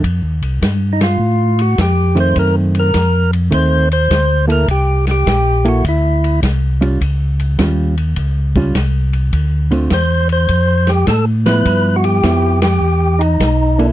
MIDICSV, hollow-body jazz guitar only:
0, 0, Header, 1, 2, 480
1, 0, Start_track
1, 0, Tempo, 580833
1, 26, Time_signature, 4, 2, 24, 8
1, 11507, End_track
2, 0, Start_track
2, 0, Title_t, "Hollow-body jazz guitar"
2, 0, Program_c, 0, 26
2, 1779, Note_on_c, 0, 51, 59
2, 1786, Note_on_c, 0, 57, 60
2, 1787, Note_on_c, 0, 60, 65
2, 2390, Note_off_c, 0, 51, 0
2, 2394, Note_off_c, 0, 57, 0
2, 2394, Note_off_c, 0, 60, 0
2, 2899, Note_on_c, 0, 51, 50
2, 2904, Note_on_c, 0, 57, 56
2, 2910, Note_on_c, 0, 60, 56
2, 3190, Note_off_c, 0, 51, 0
2, 3193, Note_off_c, 0, 57, 0
2, 3196, Note_off_c, 0, 60, 0
2, 3698, Note_on_c, 0, 58, 56
2, 3704, Note_on_c, 0, 64, 57
2, 3709, Note_on_c, 0, 69, 58
2, 3846, Note_off_c, 0, 58, 0
2, 3849, Note_off_c, 0, 64, 0
2, 3851, Note_off_c, 0, 69, 0
2, 4667, Note_on_c, 0, 58, 58
2, 4670, Note_on_c, 0, 64, 61
2, 4676, Note_on_c, 0, 69, 68
2, 4810, Note_off_c, 0, 58, 0
2, 4812, Note_off_c, 0, 64, 0
2, 4815, Note_off_c, 0, 69, 0
2, 5628, Note_on_c, 0, 55, 55
2, 5630, Note_on_c, 0, 61, 61
2, 5638, Note_on_c, 0, 65, 62
2, 5771, Note_off_c, 0, 55, 0
2, 5772, Note_off_c, 0, 61, 0
2, 5776, Note_off_c, 0, 65, 0
2, 6269, Note_on_c, 0, 55, 49
2, 6274, Note_on_c, 0, 61, 47
2, 6280, Note_on_c, 0, 65, 52
2, 6556, Note_off_c, 0, 55, 0
2, 6558, Note_off_c, 0, 61, 0
2, 6562, Note_off_c, 0, 65, 0
2, 7073, Note_on_c, 0, 55, 56
2, 7079, Note_on_c, 0, 61, 58
2, 7081, Note_on_c, 0, 65, 69
2, 7214, Note_off_c, 0, 55, 0
2, 7217, Note_off_c, 0, 61, 0
2, 7218, Note_off_c, 0, 65, 0
2, 8023, Note_on_c, 0, 50, 55
2, 8031, Note_on_c, 0, 57, 60
2, 8032, Note_on_c, 0, 60, 59
2, 8035, Note_on_c, 0, 65, 60
2, 8169, Note_off_c, 0, 50, 0
2, 8173, Note_off_c, 0, 57, 0
2, 8174, Note_off_c, 0, 60, 0
2, 8175, Note_off_c, 0, 65, 0
2, 9469, Note_on_c, 0, 53, 63
2, 9474, Note_on_c, 0, 59, 60
2, 9480, Note_on_c, 0, 64, 62
2, 10077, Note_off_c, 0, 53, 0
2, 10080, Note_off_c, 0, 59, 0
2, 10083, Note_off_c, 0, 64, 0
2, 10110, Note_on_c, 0, 53, 47
2, 10114, Note_on_c, 0, 59, 52
2, 10120, Note_on_c, 0, 64, 57
2, 10398, Note_off_c, 0, 53, 0
2, 10400, Note_off_c, 0, 59, 0
2, 10403, Note_off_c, 0, 64, 0
2, 11396, Note_on_c, 0, 58, 60
2, 11399, Note_on_c, 0, 64, 59
2, 11408, Note_on_c, 0, 69, 59
2, 11507, Note_off_c, 0, 58, 0
2, 11507, Note_off_c, 0, 64, 0
2, 11507, Note_off_c, 0, 69, 0
2, 11507, End_track
0, 0, End_of_file